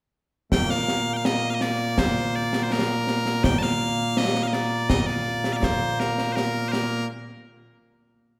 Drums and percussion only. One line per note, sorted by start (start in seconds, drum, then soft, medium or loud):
0.52 concert bass drum medium
0.52 snare medium
0.70 snare medium
0.88 snare medium
1.25 snare loud
1.61 snare medium
1.98 concert bass drum medium
1.98 snare loud
2.16 snare soft
2.53 snare medium
2.71 snare medium
3.07 snare medium
3.26 snare medium
3.44 concert bass drum medium
3.44 snare loud
3.62 snare medium
4.17 snare medium
4.35 snare medium
4.53 snare medium
4.90 concert bass drum medium
4.90 snare loud
5.07 snare soft
5.44 snare medium
5.63 concert bass drum medium
5.63 snare medium
6.00 snare medium
6.18 snare medium
6.37 snare medium
6.73 snare medium